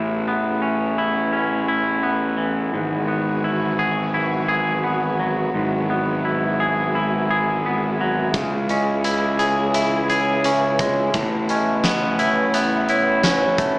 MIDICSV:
0, 0, Header, 1, 6, 480
1, 0, Start_track
1, 0, Key_signature, 4, "major"
1, 0, Tempo, 700935
1, 1872, Time_signature, 4, 2, 24, 8
1, 9441, End_track
2, 0, Start_track
2, 0, Title_t, "Vibraphone"
2, 0, Program_c, 0, 11
2, 5711, Note_on_c, 0, 76, 53
2, 5951, Note_on_c, 0, 75, 52
2, 5952, Note_off_c, 0, 76, 0
2, 6426, Note_on_c, 0, 73, 49
2, 6432, Note_off_c, 0, 75, 0
2, 6669, Note_off_c, 0, 73, 0
2, 6670, Note_on_c, 0, 76, 64
2, 6905, Note_on_c, 0, 73, 51
2, 6911, Note_off_c, 0, 76, 0
2, 7141, Note_off_c, 0, 73, 0
2, 7149, Note_on_c, 0, 73, 53
2, 7630, Note_off_c, 0, 73, 0
2, 7874, Note_on_c, 0, 75, 55
2, 8345, Note_on_c, 0, 73, 52
2, 8351, Note_off_c, 0, 75, 0
2, 8587, Note_off_c, 0, 73, 0
2, 8589, Note_on_c, 0, 76, 71
2, 8828, Note_off_c, 0, 76, 0
2, 8828, Note_on_c, 0, 73, 60
2, 9056, Note_off_c, 0, 73, 0
2, 9441, End_track
3, 0, Start_track
3, 0, Title_t, "Clean electric guitar"
3, 0, Program_c, 1, 27
3, 0, Note_on_c, 1, 45, 45
3, 0, Note_on_c, 1, 52, 46
3, 0, Note_on_c, 1, 64, 43
3, 190, Note_on_c, 1, 59, 45
3, 424, Note_on_c, 1, 61, 40
3, 670, Note_off_c, 1, 64, 0
3, 673, Note_on_c, 1, 64, 47
3, 900, Note_off_c, 1, 61, 0
3, 908, Note_on_c, 1, 61, 38
3, 1150, Note_off_c, 1, 45, 0
3, 1151, Note_off_c, 1, 64, 0
3, 1153, Note_on_c, 1, 64, 47
3, 1388, Note_off_c, 1, 59, 0
3, 1391, Note_on_c, 1, 59, 44
3, 1623, Note_off_c, 1, 52, 0
3, 1626, Note_on_c, 1, 52, 44
3, 1871, Note_off_c, 1, 61, 0
3, 1874, Note_on_c, 1, 44, 52
3, 2108, Note_off_c, 1, 59, 0
3, 2110, Note_on_c, 1, 59, 40
3, 2358, Note_off_c, 1, 64, 0
3, 2358, Note_on_c, 1, 64, 44
3, 2595, Note_on_c, 1, 68, 50
3, 2833, Note_off_c, 1, 64, 0
3, 2836, Note_on_c, 1, 64, 45
3, 3068, Note_off_c, 1, 68, 0
3, 3071, Note_on_c, 1, 68, 53
3, 3075, Note_off_c, 1, 44, 0
3, 3305, Note_off_c, 1, 59, 0
3, 3313, Note_on_c, 1, 59, 46
3, 3556, Note_off_c, 1, 52, 0
3, 3559, Note_on_c, 1, 54, 50
3, 3797, Note_on_c, 1, 44, 47
3, 4032, Note_off_c, 1, 59, 0
3, 4040, Note_on_c, 1, 59, 43
3, 4277, Note_off_c, 1, 64, 0
3, 4280, Note_on_c, 1, 64, 42
3, 4518, Note_off_c, 1, 68, 0
3, 4521, Note_on_c, 1, 68, 48
3, 4757, Note_off_c, 1, 54, 0
3, 4758, Note_off_c, 1, 64, 0
3, 4760, Note_on_c, 1, 64, 47
3, 4995, Note_off_c, 1, 68, 0
3, 4996, Note_off_c, 1, 44, 0
3, 5003, Note_on_c, 1, 68, 54
3, 5237, Note_off_c, 1, 59, 0
3, 5246, Note_on_c, 1, 59, 45
3, 5483, Note_on_c, 1, 54, 47
3, 5718, Note_off_c, 1, 54, 0
3, 5718, Note_off_c, 1, 68, 0
3, 5720, Note_off_c, 1, 59, 0
3, 5723, Note_on_c, 1, 49, 52
3, 5960, Note_on_c, 1, 61, 45
3, 6193, Note_off_c, 1, 64, 0
3, 6196, Note_on_c, 1, 64, 45
3, 6431, Note_on_c, 1, 68, 52
3, 6671, Note_off_c, 1, 64, 0
3, 6674, Note_on_c, 1, 64, 47
3, 6906, Note_off_c, 1, 68, 0
3, 6914, Note_on_c, 1, 68, 55
3, 6917, Note_off_c, 1, 49, 0
3, 7151, Note_off_c, 1, 61, 0
3, 7159, Note_on_c, 1, 61, 49
3, 7401, Note_on_c, 1, 56, 49
3, 7632, Note_off_c, 1, 68, 0
3, 7634, Note_off_c, 1, 61, 0
3, 7635, Note_on_c, 1, 45, 58
3, 7636, Note_off_c, 1, 56, 0
3, 7878, Note_on_c, 1, 61, 50
3, 8110, Note_off_c, 1, 64, 0
3, 8112, Note_on_c, 1, 59, 48
3, 8348, Note_on_c, 1, 64, 56
3, 8587, Note_off_c, 1, 59, 0
3, 8589, Note_on_c, 1, 59, 51
3, 8828, Note_off_c, 1, 64, 0
3, 8830, Note_off_c, 1, 45, 0
3, 8831, Note_on_c, 1, 64, 54
3, 9058, Note_off_c, 1, 61, 0
3, 9066, Note_on_c, 1, 61, 48
3, 9302, Note_on_c, 1, 57, 56
3, 9441, Note_off_c, 1, 57, 0
3, 9441, Note_off_c, 1, 59, 0
3, 9441, Note_off_c, 1, 61, 0
3, 9441, Note_off_c, 1, 64, 0
3, 9441, End_track
4, 0, Start_track
4, 0, Title_t, "String section"
4, 0, Program_c, 2, 48
4, 0, Note_on_c, 2, 49, 46
4, 0, Note_on_c, 2, 52, 42
4, 0, Note_on_c, 2, 57, 48
4, 0, Note_on_c, 2, 59, 46
4, 0, Note_on_c, 2, 64, 39
4, 1847, Note_off_c, 2, 64, 0
4, 1848, Note_off_c, 2, 49, 0
4, 1854, Note_off_c, 2, 57, 0
4, 1854, Note_off_c, 2, 59, 0
4, 1870, Note_on_c, 2, 54, 51
4, 1870, Note_on_c, 2, 66, 61
4, 1874, Note_on_c, 2, 56, 53
4, 1875, Note_on_c, 2, 59, 50
4, 3774, Note_off_c, 2, 66, 0
4, 3789, Note_on_c, 2, 64, 61
4, 5685, Note_off_c, 2, 54, 0
4, 5688, Note_off_c, 2, 59, 0
4, 5689, Note_off_c, 2, 52, 0
4, 5719, Note_on_c, 2, 49, 56
4, 5720, Note_on_c, 2, 52, 47
4, 5723, Note_on_c, 2, 68, 61
4, 7605, Note_off_c, 2, 56, 0
4, 7616, Note_off_c, 2, 68, 0
4, 7632, Note_on_c, 2, 57, 53
4, 7632, Note_on_c, 2, 59, 57
4, 9441, Note_off_c, 2, 49, 0
4, 9441, Note_off_c, 2, 52, 0
4, 9441, Note_off_c, 2, 57, 0
4, 9441, Note_off_c, 2, 59, 0
4, 9441, Note_off_c, 2, 64, 0
4, 9441, End_track
5, 0, Start_track
5, 0, Title_t, "Fingered electric bass"
5, 0, Program_c, 3, 33
5, 0, Note_on_c, 3, 33, 52
5, 1841, Note_off_c, 3, 33, 0
5, 1874, Note_on_c, 3, 32, 54
5, 3767, Note_off_c, 3, 32, 0
5, 3791, Note_on_c, 3, 32, 55
5, 5685, Note_off_c, 3, 32, 0
5, 5708, Note_on_c, 3, 37, 53
5, 7601, Note_off_c, 3, 37, 0
5, 7627, Note_on_c, 3, 33, 59
5, 9441, Note_off_c, 3, 33, 0
5, 9441, End_track
6, 0, Start_track
6, 0, Title_t, "Drums"
6, 5712, Note_on_c, 9, 36, 62
6, 5713, Note_on_c, 9, 42, 44
6, 5780, Note_off_c, 9, 36, 0
6, 5782, Note_off_c, 9, 42, 0
6, 5953, Note_on_c, 9, 42, 40
6, 6021, Note_off_c, 9, 42, 0
6, 6193, Note_on_c, 9, 42, 56
6, 6262, Note_off_c, 9, 42, 0
6, 6432, Note_on_c, 9, 42, 46
6, 6500, Note_off_c, 9, 42, 0
6, 6672, Note_on_c, 9, 42, 60
6, 6741, Note_off_c, 9, 42, 0
6, 6913, Note_on_c, 9, 42, 44
6, 6982, Note_off_c, 9, 42, 0
6, 7152, Note_on_c, 9, 42, 59
6, 7220, Note_off_c, 9, 42, 0
6, 7390, Note_on_c, 9, 36, 68
6, 7391, Note_on_c, 9, 42, 52
6, 7459, Note_off_c, 9, 36, 0
6, 7459, Note_off_c, 9, 42, 0
6, 7628, Note_on_c, 9, 42, 46
6, 7629, Note_on_c, 9, 36, 62
6, 7696, Note_off_c, 9, 42, 0
6, 7697, Note_off_c, 9, 36, 0
6, 7868, Note_on_c, 9, 42, 46
6, 7936, Note_off_c, 9, 42, 0
6, 8106, Note_on_c, 9, 38, 69
6, 8106, Note_on_c, 9, 42, 56
6, 8175, Note_off_c, 9, 38, 0
6, 8175, Note_off_c, 9, 42, 0
6, 8347, Note_on_c, 9, 42, 49
6, 8416, Note_off_c, 9, 42, 0
6, 8586, Note_on_c, 9, 42, 60
6, 8655, Note_off_c, 9, 42, 0
6, 8824, Note_on_c, 9, 42, 42
6, 8892, Note_off_c, 9, 42, 0
6, 9063, Note_on_c, 9, 38, 85
6, 9063, Note_on_c, 9, 42, 54
6, 9131, Note_off_c, 9, 38, 0
6, 9131, Note_off_c, 9, 42, 0
6, 9302, Note_on_c, 9, 36, 76
6, 9302, Note_on_c, 9, 42, 54
6, 9370, Note_off_c, 9, 42, 0
6, 9371, Note_off_c, 9, 36, 0
6, 9441, End_track
0, 0, End_of_file